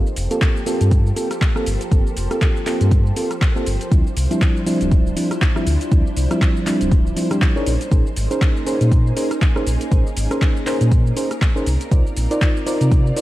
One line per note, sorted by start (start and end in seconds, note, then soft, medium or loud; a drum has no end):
0.00 7.63 F3 medium
0.00 3.88 A#3 medium
0.00 3.88 G4 medium
0.00 3.88 A4 medium
0.00 9.63 C5 medium
0.07 shaker soft
0.16 0.27 F1 loud
0.16 open hi-hat loud
0.16 shaker medium
0.31 0.64 A#3 medium
0.31 0.64 C4 medium
0.31 0.64 F4 medium
0.31 0.64 G4 medium
0.31 0.64 A4 medium
0.31 closed hi-hat medium
0.31 shaker soft
0.41 kick loud
0.41 clap loud
0.41 closed hi-hat medium
0.41 shaker soft
0.57 shaker soft
0.66 1.14 A#3 loud
0.66 1.14 C4 medium
0.66 1.14 F4 medium
0.66 1.14 G4 medium
0.66 1.14 A4 loud
0.66 open hi-hat loud
0.66 shaker medium
0.81 1.12 G2 loud
0.81 closed hi-hat medium
0.81 shaker soft
0.91 kick loud
0.91 closed hi-hat medium
0.91 shaker soft
1.07 shaker soft
1.16 1.29 A#3 medium
1.16 1.29 C4 medium
1.16 1.29 F4 medium
1.16 1.29 G4 medium
1.16 1.29 A4 medium
1.16 open hi-hat loud
1.16 shaker medium
1.31 cross-stick medium
1.31 closed hi-hat medium
1.31 shaker soft
1.41 kick loud
1.41 clap loud
1.41 closed hi-hat soft
1.41 shaker soft
1.56 1.65 A#3 medium
1.56 1.65 C4 medium
1.56 1.65 F4 medium
1.56 1.65 G4 medium
1.56 1.65 A4 loud
1.56 cross-stick medium
1.56 shaker soft
1.66 1.77 G1 loud
1.66 open hi-hat medium
1.66 shaker medium
1.81 closed hi-hat medium
1.81 shaker soft
1.91 2.02 G1 loud
1.91 2.04 A#3 medium
1.91 2.04 C4 medium
1.91 2.04 F4 medium
1.91 2.04 G4 medium
1.91 2.04 A4 medium
1.91 kick loud
1.91 closed hi-hat medium
1.91 shaker soft
2.07 shaker soft
2.16 2.27 F1 loud
2.16 open hi-hat loud
2.16 shaker medium
2.31 2.64 A#3 medium
2.31 2.64 C4 medium
2.31 2.64 F4 medium
2.31 2.64 G4 medium
2.31 2.64 A4 medium
2.31 cross-stick medium
2.31 closed hi-hat medium
2.31 shaker soft
2.41 kick loud
2.41 clap loud
2.41 closed hi-hat medium
2.41 shaker soft
2.57 shaker soft
2.66 3.14 A#3 loud
2.66 3.14 C4 medium
2.66 3.14 F4 medium
2.66 3.14 G4 medium
2.66 3.14 A4 loud
2.66 clap medium
2.66 open hi-hat loud
2.66 shaker medium
2.81 3.12 G2 loud
2.81 closed hi-hat medium
2.81 shaker soft
2.91 kick loud
2.91 closed hi-hat medium
2.91 shaker soft
3.06 shaker soft
3.16 3.29 A#3 medium
3.16 3.29 C4 medium
3.16 3.29 F4 medium
3.16 3.29 G4 medium
3.16 3.29 A4 medium
3.16 open hi-hat loud
3.16 shaker medium
3.31 cross-stick medium
3.31 closed hi-hat medium
3.31 shaker soft
3.41 kick loud
3.41 clap loud
3.41 closed hi-hat soft
3.41 shaker soft
3.56 3.65 A#3 medium
3.56 3.65 C4 medium
3.56 3.65 F4 medium
3.56 3.65 G4 medium
3.56 3.65 A4 loud
3.56 shaker soft
3.66 3.77 G1 loud
3.66 open hi-hat loud
3.66 shaker medium
3.81 closed hi-hat medium
3.81 shaker soft
3.91 4.02 D2 loud
3.91 4.04 F3 medium
3.91 7.63 G3 medium
3.91 4.04 G3 medium
3.91 4.04 C4 medium
3.91 7.63 D4 medium
3.91 4.04 D4 medium
3.91 7.63 E4 medium
3.91 4.04 E4 medium
3.91 kick loud
3.91 closed hi-hat medium
3.91 shaker soft
4.07 shaker soft
4.16 4.27 C2 loud
4.16 open hi-hat loud
4.16 shaker medium
4.31 4.64 F3 medium
4.31 4.64 G3 medium
4.31 4.64 C4 medium
4.31 4.64 D4 medium
4.31 4.64 E4 medium
4.31 closed hi-hat soft
4.31 shaker soft
4.42 kick loud
4.42 clap loud
4.42 closed hi-hat medium
4.42 shaker soft
4.57 shaker soft
4.66 5.14 F3 medium
4.66 5.14 G3 medium
4.66 5.14 C4 medium
4.66 5.14 D4 medium
4.66 5.14 E4 loud
4.66 open hi-hat loud
4.66 shaker medium
4.81 5.12 D1 loud
4.81 closed hi-hat medium
4.81 shaker soft
4.92 kick loud
4.92 closed hi-hat medium
4.92 shaker soft
5.07 shaker soft
5.16 5.29 F3 medium
5.16 5.29 G3 medium
5.16 5.29 C4 medium
5.16 5.29 D4 medium
5.16 5.29 E4 medium
5.16 open hi-hat loud
5.16 shaker medium
5.31 cross-stick medium
5.31 closed hi-hat medium
5.31 shaker soft
5.42 kick loud
5.42 clap loud
5.42 closed hi-hat soft
5.42 shaker soft
5.56 5.65 F3 medium
5.56 5.65 G3 medium
5.56 5.65 C4 medium
5.56 5.65 D4 medium
5.56 5.65 E4 loud
5.56 cross-stick medium
5.56 shaker soft
5.66 5.77 D2 loud
5.66 open hi-hat loud
5.66 shaker medium
5.81 closed hi-hat medium
5.81 shaker soft
5.91 6.02 D2 loud
5.91 6.04 F3 medium
5.91 6.04 G3 medium
5.91 6.04 C4 medium
5.91 6.04 D4 medium
5.91 6.04 E4 medium
5.91 kick loud
5.91 closed hi-hat medium
5.91 shaker soft
6.07 shaker soft
6.16 6.27 C2 loud
6.16 open hi-hat loud
6.16 shaker medium
6.31 6.64 F3 medium
6.31 6.64 G3 medium
6.31 6.64 C4 medium
6.31 6.64 D4 medium
6.31 6.64 E4 medium
6.31 cross-stick medium
6.31 closed hi-hat medium
6.31 shaker soft
6.42 kick loud
6.42 clap loud
6.42 closed hi-hat medium
6.42 shaker soft
6.57 shaker soft
6.67 7.14 F3 medium
6.67 7.14 G3 medium
6.67 7.14 C4 medium
6.67 7.14 D4 medium
6.67 7.14 E4 loud
6.67 clap medium
6.67 open hi-hat loud
6.67 shaker medium
6.81 7.12 D1 loud
6.81 closed hi-hat medium
6.81 shaker soft
6.92 kick loud
6.92 closed hi-hat medium
6.92 shaker soft
7.07 shaker soft
7.16 7.29 F3 medium
7.16 7.29 G3 medium
7.16 7.29 C4 medium
7.16 7.29 D4 medium
7.16 7.29 E4 medium
7.16 open hi-hat loud
7.16 shaker medium
7.31 7.52 F3 medium
7.31 7.52 G3 medium
7.31 7.53 C4 medium
7.31 7.53 D4 medium
7.31 7.53 G4 medium
7.31 cross-stick medium
7.31 closed hi-hat medium
7.31 shaker soft
7.42 kick loud
7.42 clap loud
7.42 closed hi-hat soft
7.42 shaker soft
7.56 7.72 C#4 medium
7.56 7.72 D#4 medium
7.56 7.72 G#4 medium
7.56 7.73 A#4 medium
7.56 7.73 C#5 loud
7.56 shaker soft
7.66 7.77 A#1 loud
7.66 11.63 A#3 medium
7.66 11.63 C#4 medium
7.66 11.63 D#4 medium
7.66 11.63 G#4 medium
7.66 open hi-hat loud
7.66 shaker medium
7.81 closed hi-hat medium
7.81 shaker soft
7.91 8.02 A#1 loud
7.91 8.04 C#4 medium
7.91 8.04 D#4 medium
7.91 8.04 G#4 medium
7.91 8.04 A#4 medium
7.91 8.04 C5 medium
7.91 kick loud
7.91 closed hi-hat medium
7.91 shaker soft
8.07 shaker soft
8.16 8.27 G#1 loud
8.16 open hi-hat loud
8.16 shaker medium
8.31 8.64 C#4 medium
8.31 8.64 D#4 medium
8.31 8.64 G#4 medium
8.31 8.64 A#4 medium
8.31 8.64 C5 medium
8.31 closed hi-hat medium
8.31 shaker soft
8.42 kick loud
8.42 clap loud
8.42 closed hi-hat medium
8.42 shaker soft
8.57 shaker soft
8.66 9.14 C#4 medium
8.66 9.14 D#4 medium
8.66 9.14 G#4 medium
8.66 9.14 A#4 medium
8.66 9.14 C5 loud
8.66 open hi-hat medium
8.66 shaker medium
8.81 9.12 A#2 loud
8.81 closed hi-hat medium
8.81 shaker soft
8.92 kick loud
8.92 closed hi-hat medium
8.92 shaker soft
9.07 shaker soft
9.16 9.29 C#4 medium
9.16 9.29 D#4 medium
9.16 9.29 G#4 medium
9.16 9.29 A#4 medium
9.16 9.29 C5 medium
9.16 open hi-hat loud
9.16 shaker medium
9.31 cross-stick medium
9.31 closed hi-hat medium
9.31 shaker soft
9.42 kick loud
9.42 clap loud
9.42 closed hi-hat soft
9.42 shaker soft
9.56 9.65 C#4 medium
9.56 9.65 D#4 medium
9.56 9.65 G#4 medium
9.56 9.65 A#4 medium
9.56 9.65 C5 loud
9.56 cross-stick medium
9.56 shaker soft
9.66 9.77 A#1 loud
9.66 13.21 A#4 medium
9.66 open hi-hat medium
9.66 shaker medium
9.81 closed hi-hat medium
9.81 shaker soft
9.91 10.02 A#1 loud
9.91 10.04 C#4 medium
9.91 10.04 D#4 medium
9.91 10.04 G#4 medium
9.91 10.04 A#4 medium
9.91 10.04 C5 medium
9.91 kick loud
9.91 closed hi-hat medium
9.91 shaker soft
10.07 shaker soft
10.16 10.27 G#1 loud
10.16 open hi-hat loud
10.16 shaker medium
10.31 10.64 C#4 medium
10.31 10.64 D#4 medium
10.31 10.64 G#4 medium
10.31 10.64 A#4 medium
10.31 10.64 C5 medium
10.31 cross-stick medium
10.31 closed hi-hat medium
10.31 shaker soft
10.42 kick loud
10.42 clap loud
10.42 closed hi-hat medium
10.42 shaker soft
10.57 shaker soft
10.66 11.14 C#4 loud
10.66 11.14 D#4 medium
10.66 11.14 G#4 medium
10.66 11.14 A#4 medium
10.66 11.14 C5 loud
10.66 clap medium
10.66 open hi-hat medium
10.66 shaker medium
10.81 11.12 A#2 loud
10.81 closed hi-hat medium
10.81 shaker soft
10.92 kick loud
10.92 closed hi-hat medium
10.92 shaker soft
11.07 shaker soft
11.16 11.29 C#4 medium
11.16 11.29 D#4 medium
11.16 11.29 G#4 medium
11.16 11.29 A#4 medium
11.16 11.29 C5 medium
11.16 open hi-hat loud
11.16 shaker medium
11.31 cross-stick medium
11.31 closed hi-hat medium
11.31 shaker soft
11.42 kick loud
11.42 clap loud
11.42 closed hi-hat soft
11.42 shaker soft
11.56 11.65 C#4 medium
11.56 11.65 D#4 medium
11.56 11.65 G#4 medium
11.56 11.65 A#4 medium
11.56 11.65 C5 loud
11.56 shaker soft
11.66 11.77 C2 loud
11.66 13.21 C4 medium
11.66 13.21 D#4 medium
11.66 13.21 F4 medium
11.66 13.21 D5 medium
11.66 open hi-hat medium
11.66 shaker medium
11.81 closed hi-hat medium
11.81 shaker soft
11.91 12.02 C2 loud
11.91 12.04 D#4 medium
11.91 12.04 F4 medium
11.91 12.04 A#4 medium
11.91 12.04 C5 medium
11.91 12.04 D5 medium
11.91 kick loud
11.91 closed hi-hat medium
11.91 shaker soft
12.07 shaker soft
12.17 12.27 A#1 loud
12.17 open hi-hat loud
12.17 shaker medium
12.31 12.64 D#4 medium
12.31 12.64 F4 medium
12.31 12.64 A#4 medium
12.31 12.64 C5 medium
12.31 12.64 D5 medium
12.31 closed hi-hat medium
12.31 shaker soft
12.42 kick loud
12.42 clap loud
12.42 closed hi-hat medium
12.42 shaker soft
12.57 shaker soft
12.66 13.14 D#4 medium
12.66 13.14 F4 medium
12.66 13.14 A#4 medium
12.66 13.14 C5 medium
12.66 13.14 D5 loud
12.66 open hi-hat medium
12.66 shaker medium
12.81 13.12 C3 loud
12.81 closed hi-hat medium
12.81 shaker soft
12.92 kick loud
12.92 closed hi-hat medium
12.92 shaker soft
13.07 shaker soft
13.16 13.21 D#4 medium
13.16 13.21 F4 medium
13.16 13.21 A#4 medium
13.16 13.21 C5 medium
13.16 13.21 D5 medium
13.16 open hi-hat loud
13.16 shaker medium